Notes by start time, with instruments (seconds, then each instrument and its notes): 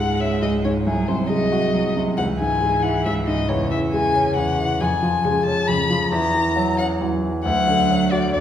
Already playing: grand piano C#2 G#2, cello G#3, violin F#5
0.00 grand piano G#3
0.20 grand piano C#4, violin E5
0.42 grand piano C#2, violin D#5
0.65 grand piano G#2, violin C#5
0.85 grand piano C2, cello F#3, violin G#4
1.08 grand piano C3, violin C5
1.30 grand piano G#3, violin D#5
1.52 grand piano F#4
1.74 grand piano C2
1.97 grand piano C3
2.17 grand piano C#2, cello E3, violin F#5
2.40 grand piano G#2, violin G#5
2.62 grand piano G#3
2.83 grand piano E4, violin F#5
3.05 grand piano C#2, violin E5
3.27 grand piano G#2, violin D#5
3.49 grand piano E2, cello C#3, violin C#5
3.71 grand piano E3, violin E5
3.93 grand piano G#3, violin G#5
4.16 grand piano C#4
4.36 grand piano E2, violin F#5
4.59 grand piano E3
4.81 grand piano F2, violin G#5
5.03 grand piano F3
5.25 cello C#3, grand piano G#3
5.45 grand piano C#4, violin A5
5.68 grand piano F2, cello C#3, violin B5
5.90 grand piano F3
6.11 grand piano E2, violin A#5
6.34 grand piano E3
6.56 cello F#3, grand piano F#3
6.78 grand piano C#4, violin F#5
7.00 grand piano E2, cello F#3
7.23 grand piano E3
7.45 grand piano D2, cello F#3, violin F#5
7.67 grand piano D3
7.90 grand piano F#3
8.11 grand piano F#4, violin D5
8.34 grand piano D2, cello F#3, violin D5